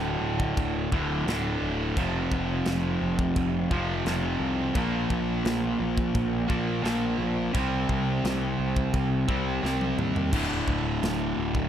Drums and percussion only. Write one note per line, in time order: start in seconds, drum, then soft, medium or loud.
0.40 kick medium
0.57 kick loud
0.57 china medium
0.92 kick medium
1.28 snare loud
1.28 china medium
1.97 kick loud
1.97 china medium
2.32 kick medium
2.66 snare loud
2.66 china medium
3.19 kick medium
3.36 kick loud
3.36 china medium
3.71 kick medium
4.06 snare loud
4.06 china medium
4.75 kick loud
4.75 china medium
5.10 kick medium
5.45 snare loud
5.45 china medium
5.98 kick medium
6.15 kick loud
6.15 china medium
6.50 kick loud
6.85 snare loud
6.85 china medium
7.55 kick loud
7.55 china medium
7.89 kick medium
8.25 snare loud
8.25 china medium
8.77 kick medium
8.94 kick loud
8.94 china medium
9.29 kick medium
9.65 snare medium
9.81 high tom medium
9.99 mid tom medium
10.16 floor tom loud
10.33 kick loud
10.33 crash loud
10.33 china medium
10.68 kick medium
11.03 snare loud
11.03 china medium
11.55 kick medium